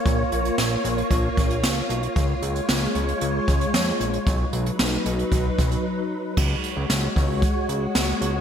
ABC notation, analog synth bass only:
X:1
M:4/4
L:1/16
Q:1/4=114
K:Dbmix
V:1 name="Analog synth bass" clef=bass
B,,,2 B,,,2 B,,,2 B,,,2 B,,,2 B,,,2 D,,2 C,,2 | D,,2 D,,2 D,,2 D,,2 D,,2 D,,2 F,,2 B,,,2 | C,,2 C,,2 C,,2 C,,2 C,,2 C,,2 z4 | D,,2 z D,, D,,2 D,,3 z D,,2 D,,2 D,,2 |]